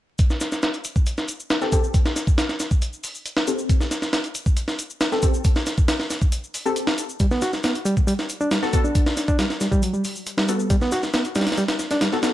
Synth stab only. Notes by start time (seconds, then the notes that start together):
1.62 C4 G4 A4
1.73 C4 G4 A4
3.47 C4 G4 A4
5.12 C4 G4 A4
5.23 C4 G4 A4
6.65 C4 G4 A4
8.62 B3 F#4 A4
8.73 B3 F#4 A4
10.48 B3 F#4 A4
12.13 B3 F#4 A4
12.23 B3 F#4 A4